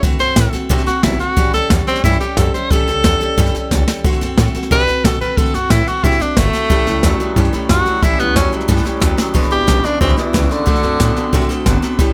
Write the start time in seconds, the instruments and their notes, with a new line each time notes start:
0.03 upright bass D2, steel-string acoustic guitar D3 A3 C4 F#4 A4, kick, snare
0.19 upright bass F#2, steel-string acoustic guitar C4 F#4 A4, tenor saxophone C5, snare
0.36 upright bass A2, steel-string acoustic guitar A3 C4 F#4 A4, kick, snare, hi-hat pedal
0.53 steel-string acoustic guitar C4 F#4 A4, muted upright bass stroke, snare
0.69 upright bass C3, steel-string acoustic guitar D3 A3 C4 F#4 A4, kick, snare
0.78 snare
0.86 steel-string acoustic guitar C4 F#4 A4, tenor saxophone F#4, muted upright bass stroke, snare
1.03 upright bass B1, steel-string acoustic guitar A3 C4 F#4 A4, tenor saxophone E4, kick, snare, hi-hat pedal
1.19 steel-string acoustic guitar C4 F#4 A4, tenor saxophone F#4, muted upright bass stroke, snare
1.36 upright bass A1, steel-string acoustic guitar A2 E3 G3 C#4 G4 A4, kick, snare
1.53 upright bass C#2, steel-string acoustic guitar G3 C#4 G4 A4, tenor saxophone A4, snare
1.70 upright bass E2, steel-string acoustic guitar G3 C#4 G4 A4, kick, snare, hi-hat pedal
1.87 steel-string acoustic guitar G3 C#4 G4 A4, tenor saxophone C4, muted upright bass stroke, snare
1.95 snare
2.04 upright bass G2, steel-string acoustic guitar A2 E3 G3 C#4 G4 A4, tenor saxophone E4, kick, snare
2.12 snare
2.20 steel-string acoustic guitar G3 C#4 G4 A4, tenor saxophone G4, muted upright bass stroke, snare
2.37 upright bass F#2, steel-string acoustic guitar G3 C#4 G4 A4, tenor saxophone A4, kick, snare, hi-hat pedal
2.54 steel-string acoustic guitar G3 C#4 G4 A4, tenor saxophone C5, muted upright bass stroke, snare
2.70 upright bass A1, steel-string acoustic guitar A2 E3 G3 C#4 G4 A4, tenor saxophone A4, kick, snare
2.87 upright bass C#2, steel-string acoustic guitar G3 C#4 G4 A4, snare
3.04 upright bass E2, steel-string acoustic guitar G3 C#4 G4 A4, kick, snare, hi-hat pedal
3.21 steel-string acoustic guitar G3 C#4 G4 A4, muted upright bass stroke, snare
3.38 upright bass G2, steel-string acoustic guitar A2 E3 G3 C#4 G4 A4, kick, snare
3.46 snare
3.54 steel-string acoustic guitar G3 C#4 G4 A4, muted upright bass stroke, snare
3.71 upright bass C#2, steel-string acoustic guitar G3 C#4 G4 A4, kick, snare, hi-hat pedal
3.88 steel-string acoustic guitar G3 C#4 G4 A4, muted upright bass stroke, snare
4.04 upright bass D2, steel-string acoustic guitar D3 A3 C4 F#4 A4, kick, snare
4.13 snare
4.21 upright bass F#2, steel-string acoustic guitar C4 F#4 A4, snare
4.37 upright bass A2, steel-string acoustic guitar A3 C4 F#4 A4, kick, snare, hi-hat pedal
4.54 steel-string acoustic guitar C4 F#4 A4, muted upright bass stroke, snare
4.63 snare
4.71 upright bass C3, steel-string acoustic guitar D3 A3 C4 F#4 A4, tenor saxophone B4, kick, snare
4.80 snare
4.87 steel-string acoustic guitar C4 F#4 A4, muted upright bass stroke, snare
5.04 upright bass B2, steel-string acoustic guitar A3 C4 F#4 A4, tenor saxophone A4, kick, snare, hi-hat pedal
5.21 steel-string acoustic guitar C4 F#4 A4, tenor saxophone B4, muted upright bass stroke, snare
5.37 upright bass D2, steel-string acoustic guitar D3 A3 C4 F#4 A4, tenor saxophone A4, kick, snare
5.46 snare
5.54 upright bass F#2, steel-string acoustic guitar C4 F#4 A4, tenor saxophone F#4, snare
5.70 upright bass A2, steel-string acoustic guitar A3 C4 F#4 A4, tenor saxophone E4, kick, snare, hi-hat pedal
5.87 steel-string acoustic guitar C4 F#4 A4, tenor saxophone F#4, muted upright bass stroke, snare
6.04 upright bass C3, steel-string acoustic guitar D3 A3 C4 F#4 A4, tenor saxophone E4, kick, snare
6.12 snare
6.20 steel-string acoustic guitar C4 F#4 A4, tenor saxophone D4, muted upright bass stroke, snare
6.37 upright bass G1, steel-string acoustic guitar A3 C4 F#4 A4, tenor saxophone A3, kick, snare, hi-hat pedal
6.53 steel-string acoustic guitar C4 F#4 A4, snare
6.70 upright bass A1, steel-string acoustic guitar A2 E3 G3 C#4 G4 A4, clean electric guitar A2 E3, kick, snare
6.86 upright bass C#2, clean electric guitar A2 E3, steel-string acoustic guitar G3 C#4 G4 A4, snare
7.03 upright bass E2, clean electric guitar A2 F#3, steel-string acoustic guitar G3 C#4 G4 A4, kick, snare, hi-hat pedal
7.20 clean electric guitar A2 F#3, steel-string acoustic guitar G3 C#4 G4 A4, muted upright bass stroke, snare
7.36 upright bass G2, steel-string acoustic guitar A2 E3 G3 C#4 G4 A4, clean electric guitar A2 E3, kick, snare
7.45 snare
7.53 clean electric guitar A2 E3, steel-string acoustic guitar G3 C#4 G4 A4, muted upright bass stroke, snare
7.69 upright bass F#2, clean electric guitar A2 F#3, steel-string acoustic guitar G3 C#4 G4 A4, tenor saxophone F#4, kick, snare, hi-hat pedal
7.86 clean electric guitar A2 F#3, steel-string acoustic guitar G3 C#4 G4 A4, muted upright bass stroke, snare
8.02 upright bass A1, steel-string acoustic guitar A2 E3 G3 C#4 G4 A4, clean electric guitar A2 E3, tenor saxophone E4, kick, snare
8.19 upright bass C#2, clean electric guitar A2 E3, steel-string acoustic guitar G3 C#4 G4 A4, tenor saxophone B3, snare
8.36 upright bass E2, clean electric guitar A2 F#3, steel-string acoustic guitar G3 C#4 G4 A4, tenor saxophone C#4, kick, snare, hi-hat pedal
8.52 clean electric guitar A2 F#3, steel-string acoustic guitar G3 C#4 G4 A4, muted upright bass stroke, snare
8.61 snare
8.68 upright bass G2, steel-string acoustic guitar A2 E3 G3 C#4 G4 A4, clean electric guitar A2 E3, kick, snare
8.77 snare
8.84 clean electric guitar A2 E3, steel-string acoustic guitar G3 C#4 G4 A4, muted upright bass stroke, snare
9.00 upright bass D#2, clean electric guitar A2 F#3, steel-string acoustic guitar G3 C#4 G4 A4, kick, snare, hi-hat pedal
9.18 clean electric guitar A2 F#3, steel-string acoustic guitar G3 C#4 G4 A4, snare
9.34 upright bass E1, clean electric guitar E2 B2, steel-string acoustic guitar E3 G#3 D4 E4 B4, kick, snare
9.43 snare
9.51 upright bass G#1, clean electric guitar E2 B2, steel-string acoustic guitar D4 E4 B4, tenor saxophone G4, snare
9.67 upright bass B1, clean electric guitar E2 C#3, steel-string acoustic guitar G#3 D4 E4 B4, kick, snare, hi-hat pedal
9.84 clean electric guitar E2 C#3, tenor saxophone D4, steel-string acoustic guitar D4 E4 B4, muted upright bass stroke, snare
10.01 upright bass D2, clean electric guitar E2 B2, steel-string acoustic guitar E3 G#3 D4 E4 B4, tenor saxophone C4, kick, snare
10.09 snare
10.17 clean electric guitar E2 B2, tenor saxophone E3, steel-string acoustic guitar D4 E4 B4, snare
10.33 upright bass C#2, clean electric guitar E2 C#3, steel-string acoustic guitar G#3 D4 E4 B4, kick, snare, hi-hat pedal
10.49 clean electric guitar E2 C#3, tenor saxophone D3, steel-string acoustic guitar D4 E4 B4, snare
10.66 upright bass D2, steel-string acoustic guitar D3 A3 C4 F#4 A4, clean electric guitar D3 A3, kick, snare
10.75 snare
10.83 upright bass F#2, clean electric guitar D3 A3, steel-string acoustic guitar C4 F#4 A4, snare
11.00 upright bass A2, clean electric guitar D3 B3, steel-string acoustic guitar A3 C4 F#4 A4, kick, snare, hi-hat pedal
11.16 clean electric guitar D3 B3, steel-string acoustic guitar C4 F#4 A4, muted upright bass stroke, snare
11.33 upright bass C3, steel-string acoustic guitar D3 A3 C4 F#4 A4, clean electric guitar D3 A3, kick, snare
11.41 snare
11.49 clean electric guitar D3 A3, steel-string acoustic guitar C4 F#4 A4, muted upright bass stroke, snare
11.66 upright bass G1, clean electric guitar D3 B3, steel-string acoustic guitar A3 C4 F#4 A4, kick, snare, hi-hat pedal
11.82 clean electric guitar D3 B3, steel-string acoustic guitar C4 F#4 A4, snare
11.99 upright bass A1, clean electric guitar A2 E3, steel-string acoustic guitar A2 E3 G3 C#4 G4 A4, kick, snare